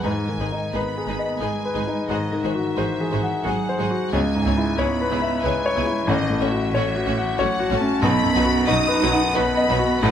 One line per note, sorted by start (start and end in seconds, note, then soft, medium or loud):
0.02 0.11 G#1 soft
0.02 2.07 G#2 soft
0.02 0.11 G#3 soft
0.02 0.74 G#3 soft
0.02 0.11 D#4 soft
0.02 0.11 G#4 soft
0.02 0.12 B4 soft
0.02 0.74 G#5 medium
0.29 0.66 D#3 soft
0.39 0.47 G#1 soft
0.39 0.48 G#3 soft
0.39 0.48 D#4 soft
0.39 0.48 G#4 soft
0.39 0.48 B4 soft
0.52 0.89 D#4 soft
0.73 0.82 G#1 soft
0.73 0.82 G#3 soft
0.73 1.42 B3 soft
0.73 0.82 D#4 soft
0.73 0.82 G#4 soft
0.73 0.82 B4 soft
0.73 1.11 B4 soft
0.73 1.41 B5 medium
0.98 1.34 G#4 soft
1.07 1.16 G#1 soft
1.07 1.15 G#3 soft
1.07 1.16 D#4 soft
1.07 1.17 G#4 soft
1.07 1.17 B4 soft
1.19 1.55 D#5 soft
1.40 1.49 G#1 soft
1.40 1.48 G#3 soft
1.40 2.10 G#3 soft
1.40 1.49 D#4 soft
1.40 1.78 G#4 soft
1.40 1.51 G#4 soft
1.40 1.51 B4 soft
1.40 2.09 G#5 medium
1.65 2.01 B4 soft
1.75 1.83 G#1 soft
1.75 1.83 G#3 soft
1.75 1.83 D#4 soft
1.75 1.83 G#4 soft
1.75 1.83 B4 soft
1.87 2.10 D#4 soft
2.08 2.17 G#1 soft
2.08 4.08 G#2 medium
2.08 2.43 D#3 soft
2.08 2.17 G#3 soft
2.08 2.17 F#4 soft
2.08 2.18 G#4 soft
2.08 2.18 C5 soft
2.08 2.42 D#5 medium
2.32 2.69 D#3 soft
2.42 2.52 G#1 soft
2.42 3.45 E3 soft
2.42 2.52 G#3 soft
2.42 2.52 F#4 soft
2.42 2.52 G#4 soft
2.42 2.52 C5 soft
2.42 3.45 E5 medium
2.55 2.91 F#4 soft
2.77 2.86 G#1 soft
2.77 2.86 G#3 soft
2.77 2.86 F#4 soft
2.77 2.86 G#4 soft
2.77 2.85 C5 soft
2.77 3.14 C5 soft
3.01 3.36 G#4 soft
3.12 3.20 G#1 soft
3.12 3.20 G#3 soft
3.12 3.20 F#4 soft
3.12 3.20 G#4 soft
3.12 3.20 C5 soft
3.23 3.59 F#5 soft
3.45 3.53 G#1 soft
3.45 3.79 F#3 soft
3.45 3.53 G#3 soft
3.45 3.53 F#4 soft
3.45 3.81 G#4 soft
3.45 3.55 G#4 soft
3.45 3.54 C5 soft
3.45 3.79 F#5 medium
3.69 4.04 C5 soft
3.78 3.88 G#1 soft
3.78 4.12 F#3 soft
3.78 3.86 G#3 soft
3.78 3.86 F#4 soft
3.78 3.88 G#4 soft
3.78 3.88 C5 soft
3.78 4.12 F#5 medium
3.91 4.13 F#4 soft
4.12 4.20 C#2 medium
4.12 6.05 C#2 medium
4.12 4.79 G#3 medium
4.12 4.22 B3 soft
4.12 4.22 E4 soft
4.12 4.21 G#4 soft
4.12 4.20 C#5 soft
4.12 4.79 G#5 medium
4.35 4.70 G#2 soft
4.45 4.54 C#2 soft
4.45 4.53 B3 soft
4.45 4.53 E4 soft
4.45 4.54 G#4 soft
4.45 4.54 C#5 soft
4.57 4.92 E4 soft
4.77 4.87 C#2 medium
4.77 4.86 B3 soft
4.77 5.44 B3 medium
4.77 4.85 E4 soft
4.77 4.87 G#4 soft
4.77 5.14 C#5 soft
4.77 4.87 C#5 soft
4.77 5.45 B5 medium
5.01 5.36 B4 soft
5.10 5.20 C#2 soft
5.10 5.18 B3 soft
5.10 5.19 E4 soft
5.10 5.19 G#4 soft
5.10 5.19 C#5 soft
5.22 5.57 E5 soft
5.44 5.52 C#2 soft
5.44 6.07 G#3 medium
5.44 5.52 B3 soft
5.44 5.52 E4 soft
5.44 5.53 G#4 soft
5.44 5.78 B4 medium
5.44 5.53 C#5 soft
5.44 6.09 G#5 medium
5.66 6.00 C#5 medium
5.76 5.84 C#2 medium
5.76 5.85 B3 soft
5.76 5.85 E4 soft
5.76 5.85 G#4 soft
5.76 5.84 C#5 soft
5.87 6.08 E4 soft
6.07 8.00 A1 medium
6.07 6.16 A1 medium
6.07 6.41 D#3 medium
6.07 6.16 A3 medium
6.07 6.17 C#4 medium
6.07 6.16 F#4 medium
6.07 6.16 C#5 medium
6.07 6.41 D#5 medium
6.30 6.65 A2 soft
6.40 6.49 A1 medium
6.40 7.40 E3 medium
6.40 6.50 A3 soft
6.40 6.50 C#4 soft
6.40 6.49 F#4 soft
6.40 6.48 C#5 soft
6.40 7.40 E5 medium
6.51 6.87 F#4 soft
6.74 6.82 A1 medium
6.74 6.84 A3 medium
6.74 6.84 C#4 medium
6.74 6.83 F#4 soft
6.74 7.10 C#5 soft
6.74 6.83 C#5 soft
6.96 7.31 F#4 medium
7.07 7.15 A1 medium
7.07 7.16 A3 soft
7.07 7.16 C#4 medium
7.07 7.15 F#4 medium
7.07 7.15 C#5 medium
7.18 7.52 F#5 medium
7.38 7.47 A1 medium
7.38 7.72 F#3 medium
7.38 7.47 A3 medium
7.38 7.47 C#4 medium
7.38 7.46 F#4 medium
7.38 7.47 C#5 medium
7.38 7.74 C#5 medium
7.38 7.71 F#5 medium
7.60 7.95 F#4 medium
7.71 7.79 A1 medium
7.71 8.04 A3 medium
7.71 7.80 A3 soft
7.71 7.79 C#4 soft
7.71 7.79 F#4 soft
7.71 7.79 C#5 medium
7.71 8.04 A5 medium
7.81 8.03 C#4 medium
8.02 9.99 B1 medium
8.02 8.11 B1 medium
8.02 8.12 F#3 medium
8.02 8.70 B3 medium
8.02 8.11 D#4 medium
8.02 8.10 F#4 medium
8.02 8.10 B4 medium
8.02 8.68 B5 loud
8.23 8.59 F#2 medium
8.35 8.44 B1 medium
8.35 8.44 F#3 medium
8.35 8.43 D#4 soft
8.35 8.44 F#4 medium
8.35 8.44 B4 soft
8.44 8.81 F#4 medium
8.67 8.77 B1 medium
8.67 8.78 F#3 medium
8.67 9.37 D#4 medium
8.67 8.78 D#4 medium
8.67 8.75 F#4 medium
8.67 8.75 B4 medium
8.67 9.04 D#5 medium
8.67 9.36 D#6 medium
8.88 9.26 B4 medium
9.02 9.10 B1 medium
9.02 9.11 F#3 medium
9.02 9.11 D#4 medium
9.02 9.10 F#4 medium
9.02 9.10 B4 medium
9.12 9.49 F#5 medium
9.35 9.44 B1 medium
9.35 9.44 F#3 medium
9.35 10.03 B3 medium
9.35 9.43 D#4 medium
9.35 9.43 F#4 medium
9.35 9.72 B4 medium
9.35 9.43 B4 medium
9.35 10.03 B5 medium
9.57 9.94 D#5 medium
9.69 9.78 B1 medium
9.69 9.77 F#3 medium
9.69 9.77 D#4 medium
9.69 9.77 F#4 medium
9.69 9.77 B4 medium
9.79 10.03 F#4 medium
10.03 10.11 A1 medium
10.03 10.11 A2 medium
10.03 10.11 F#3 medium
10.03 10.11 D#4 medium
10.03 10.11 F#4 medium
10.03 10.11 B4 medium
10.03 10.11 F#5 medium